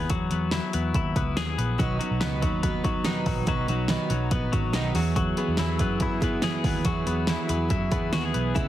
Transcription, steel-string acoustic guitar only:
1.78 2.00 B2 medium
1.78 2.00 D#3 medium
1.78 2.00 F#3 medium
1.78 2.00 B3 medium
1.78 1.99 D#4 medium
1.78 1.98 B4 medium
1.99 2.20 F#3 soft
1.99 2.20 B3 soft
1.99 2.21 D#4 soft
1.99 2.21 B4 medium
2.21 2.42 B2 medium
2.21 2.42 D#3 medium
2.21 2.42 F#3 medium
2.21 2.43 B3 medium
2.21 2.42 D#4 medium
2.21 2.41 B4 medium
2.42 2.62 F#3 soft
2.42 2.63 B3 soft
2.42 2.64 D#4 soft
2.42 2.63 B4 medium
2.63 2.84 F#3 medium
2.63 2.85 B3 medium
2.63 2.84 D#4 medium
2.63 2.82 B4 medium
2.84 3.04 F#3 soft
2.84 3.05 B3 soft
2.84 3.05 D#4 soft
2.84 3.05 B4 medium
3.04 3.45 B2 medium
3.04 3.45 D#3 medium
3.04 3.47 F#3 medium
3.04 3.47 B3 medium
3.04 3.46 D#4 medium
3.04 3.48 B4 medium
3.46 3.68 B2 medium
3.46 3.68 D#3 medium
3.46 3.69 F#3 medium
3.46 3.68 B3 medium
3.46 3.68 D#4 medium
3.46 3.67 B4 medium
3.68 3.88 F#3 soft
3.68 3.88 B3 soft
3.68 3.88 D#4 medium
3.68 3.89 B4 soft
3.88 4.10 B2 medium
3.88 4.10 D#3 medium
3.88 4.10 F#3 medium
3.88 4.10 B3 medium
3.88 4.09 D#4 medium
3.88 4.08 B4 medium
4.09 4.30 F#3 soft
4.09 4.31 B3 soft
4.09 4.32 D#4 soft
4.09 4.31 B4 medium
4.31 4.53 F#3 medium
4.31 4.53 B3 medium
4.31 4.52 D#4 medium
4.31 4.51 B4 medium
4.52 4.73 F#3 soft
4.52 4.73 B3 soft
4.52 4.73 D#4 medium
4.52 4.74 B4 medium
4.73 4.95 B2 medium
4.73 4.95 D#3 medium
4.73 4.95 F#3 medium
4.73 4.94 B3 medium
4.73 4.95 D#4 medium
4.73 4.94 B4 medium
4.95 5.57 E3 medium
4.95 5.38 F#3 medium
4.95 5.39 B3 medium
4.95 5.38 E4 medium
4.95 5.37 G#4 medium
5.37 5.57 B3 soft
5.37 5.58 E4 soft
5.37 5.59 G#4 medium
5.58 5.80 E3 medium
5.58 5.80 F#3 medium
5.58 5.80 B3 medium
5.58 5.79 E4 medium
5.58 5.77 G#4 medium
5.79 5.99 B3 soft
5.79 6.00 E4 soft
5.79 6.01 G#4 medium
6.00 6.22 F#3 medium
6.00 6.22 B3 medium
6.00 6.21 E4 medium
6.00 6.19 G#4 medium
6.20 6.42 B3 soft
6.20 6.42 E4 medium
6.20 6.43 G#4 medium
6.42 6.84 E3 medium
6.42 6.84 F#3 medium
6.42 6.85 B3 medium
6.42 6.85 E4 medium
6.42 6.86 G#4 medium
6.84 7.06 E3 medium
6.84 7.07 F#3 medium
6.84 7.07 B3 medium
6.84 7.06 E4 medium
6.84 7.05 G#4 medium
7.06 7.27 B3 soft
7.06 7.28 E4 medium
7.06 7.28 G#4 soft
7.28 7.49 E3 medium
7.28 7.49 F#3 medium
7.28 7.49 B3 medium
7.28 7.49 E4 medium
7.28 7.47 G#4 medium
7.48 7.69 B3 soft
7.48 7.69 E4 soft
7.48 7.70 G#4 medium
7.69 7.91 F#3 medium
7.69 7.92 B3 medium
7.69 7.91 E4 medium
7.69 7.90 G#4 medium
7.91 8.12 B3 soft
7.91 8.13 E4 medium
7.91 8.12 G#4 medium
8.13 8.54 E3 medium
8.13 8.55 F#3 medium
8.13 8.55 B3 medium
8.13 8.55 E4 medium
8.13 8.55 G#4 medium
8.54 8.68 C#3 medium
8.54 8.68 G#3 medium
8.54 8.68 B3 medium
8.54 8.68 E4 medium
8.54 8.68 G#4 medium

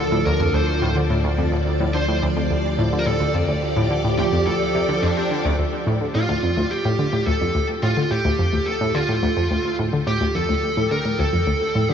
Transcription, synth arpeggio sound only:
0.12 0.22 A2 medium
0.26 0.30 D2 loud
0.40 0.51 F2 medium
0.54 0.58 D2 medium
0.82 0.93 A2 loud
0.96 1.03 D3 medium
1.10 1.21 A2 medium
1.24 1.28 D2 loud
1.38 1.49 F2 medium
1.52 1.56 D2 medium
1.80 1.91 A2 medium
1.94 2.01 D3 medium
2.08 2.19 A2 medium
2.22 2.27 D2 loud
2.36 2.47 F2 medium
2.50 2.55 D2 medium
2.79 2.89 A2 loud
2.93 2.99 D3 medium
3.06 3.17 A2 medium
3.20 3.25 D2 loud
3.35 3.45 F2 medium
3.49 3.53 D2 medium
3.77 3.87 A2 loud
3.91 3.98 D3 medium
4.05 4.15 A2 medium
4.19 4.23 D2 medium
4.32 4.43 F2 medium
4.47 4.51 D2 medium
4.75 4.79 C3 medium
4.89 4.93 D3 medium
5.03 5.10 F2 loud
5.17 5.21 C3 medium
5.31 5.38 D3 medium
5.45 5.55 D2 loud
5.59 5.63 D2 medium
5.87 5.97 A2 loud
6.01 6.08 D3 medium
6.15 6.25 A2 medium
6.29 6.33 D2 loud
6.43 6.53 F2 medium
6.57 6.61 D2 medium
6.85 6.95 A2 loud
6.99 7.06 D3 medium
7.13 7.23 A2 medium
7.27 7.31 D2 loud
7.41 7.52 F2 medium
7.55 7.59 D2 medium
7.83 7.93 A2 loud
7.97 8.04 D3 medium
8.11 8.21 A2 medium
8.25 8.29 D2 loud
8.39 8.50 F2 medium
8.53 8.57 D2 medium
8.81 8.92 A2 loud
8.95 9.02 D3 medium
9.09 9.20 A2 medium
9.23 9.27 D2 loud
9.37 9.48 F2 medium
9.51 9.55 D2 medium
9.79 9.90 A2 loud
9.93 10.00 D3 medium
10.07 10.18 A2 medium
10.21 10.25 D2 loud
10.35 10.46 F2 medium
10.49 10.54 D2 medium
10.77 10.88 A2 loud
10.91 10.98 D3 medium
11.05 11.16 A2 medium
11.19 11.24 D2 loud
11.33 11.44 F2 medium
11.47 11.52 D2 medium
11.75 11.86 A2 loud
11.89 11.94 D3 medium

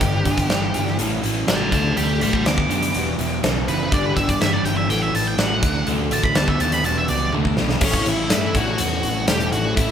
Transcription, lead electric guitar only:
0.00 0.96 G4 medium
1.48 1.72 F#5 medium
1.48 1.72 A5 medium
1.73 1.95 F#5 medium
1.73 1.97 A5 medium
1.97 2.19 D5 medium
1.97 2.20 B5 medium
2.22 2.44 D5 medium
2.22 2.45 B5 medium
2.47 3.41 D6 loud
3.68 3.91 B4 medium
3.94 4.06 D5 medium
4.06 4.16 B4 medium
4.16 4.30 E5 medium
4.30 4.41 D5 medium
4.41 4.53 E5 medium
4.53 4.65 D5 medium
4.65 4.77 G5 medium
4.77 4.89 E5 medium
4.89 5.01 G5 loud
5.03 5.14 E5 medium
5.15 5.26 A5 medium
5.27 5.38 G5 medium
5.40 5.86 F#5 loud
6.13 6.24 A5 loud
6.24 6.36 B5 medium
6.37 6.48 A5 medium
6.48 6.60 E5 medium
6.61 6.73 A5 medium
6.73 6.84 B5 medium
6.85 6.97 A5 medium
6.98 7.09 E5 medium
7.09 7.32 D5 medium
7.84 8.06 C#4 medium
8.09 8.32 E4 medium
8.33 8.56 E4 medium
8.57 9.27 F#4 loud
9.28 9.52 G4 loud
9.52 9.76 F#4 loud
9.76 9.91 E4 loud

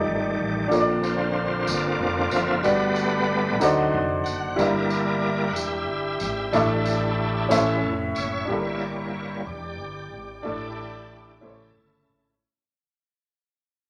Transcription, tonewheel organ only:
0.00 0.67 D#3 medium
0.00 0.67 G3 medium
0.00 0.67 A3 medium
0.00 0.67 D5 medium
0.71 2.30 D3 medium
0.71 2.61 A#3 soft
0.71 2.31 C4 medium
1.04 1.68 F4 medium
1.04 1.70 C5 medium
1.67 2.61 F4 medium
1.67 2.34 D5 medium
2.31 2.61 D3 medium
2.31 2.61 F3 soft
2.31 2.61 C4 medium
2.31 2.65 E5 loud
2.63 3.57 G3 medium
2.63 3.58 A3 medium
2.63 3.58 B3 medium
2.63 3.58 B4 medium
2.63 3.58 D5 medium
2.63 3.33 F#5 medium
3.60 4.04 F#3 medium
3.60 4.05 C4 medium
3.60 4.05 D#4 medium
4.24 4.59 F#5 loud
4.57 5.51 G3 medium
4.57 5.52 A#3 medium
4.57 5.52 E4 medium
4.57 5.52 A#4 medium
4.57 5.51 D5 medium
5.48 5.55 F#5 medium
5.54 7.79 G4 medium
5.54 7.78 E5 loud
6.53 7.47 D4 medium
6.53 7.47 E4 medium
6.53 7.47 A4 medium
7.49 7.93 C#4 medium
7.49 7.94 E4 medium
7.49 7.93 A4 medium
8.15 9.10 C#5 medium
8.15 8.83 E5 loud
8.49 9.43 G3 soft
8.49 9.43 A#3 soft
8.49 9.43 E4 soft
8.80 8.95 D5 medium
9.13 9.47 C#5 medium
9.46 11.71 G4 medium
9.46 11.71 D5 medium
10.42 11.37 D4 soft
10.42 11.38 E4 medium
10.42 11.37 A4 soft
11.40 12.35 C#3 soft
11.40 12.36 E4 soft
11.40 12.36 A4 soft

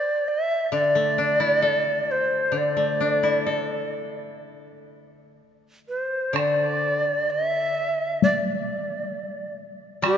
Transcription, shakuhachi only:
0.00 0.30 D5 medium
0.28 0.73 E5 medium
0.73 2.13 D5 medium
2.11 2.59 C5 medium
2.57 3.95 D5 medium
5.89 6.38 C5 medium
6.36 7.32 D5 medium
7.30 8.22 E5 medium
8.23 9.55 D5 medium
10.06 10.18 G4 medium

